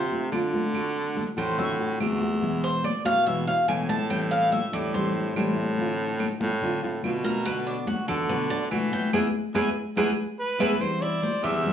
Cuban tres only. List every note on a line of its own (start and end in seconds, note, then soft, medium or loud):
0.00 0.11 C5 medium
1.38 1.58 C5 medium
1.59 1.71 E5 medium
2.64 2.84 C5 medium
2.84 3.05 D5 medium
3.06 3.26 F5 loud
3.27 3.47 E5 loud
3.47 3.68 F5 loud
3.68 3.89 G#5 medium
3.89 4.10 A5 loud
4.10 4.31 G5 medium
4.31 4.52 F5 medium
4.52 4.73 E5 medium
4.73 4.94 D5 loud
4.94 6.16 C5 medium
7.24 7.45 A#4 loud
7.45 7.66 B4 loud
7.67 7.87 D4 medium
7.87 8.08 F#4 medium
8.08 8.29 A4 loud
8.29 8.50 B4 loud
8.50 8.63 D5 loud
8.93 9.13 G5 loud
9.13 9.27 G#4 medium
9.13 9.27 B4 medium
9.13 9.27 E5 medium
9.55 9.69 G#4 medium
9.55 9.69 B4 medium
9.55 9.69 E5 medium
9.97 10.11 G#4 loud
9.97 10.11 B4 loud
9.97 10.11 E5 medium
10.60 10.74 G#4 loud
10.60 10.74 B4 loud
10.60 10.74 E5 loud
11.02 11.22 E4 medium
11.23 11.43 C5 medium
11.44 11.73 G4 medium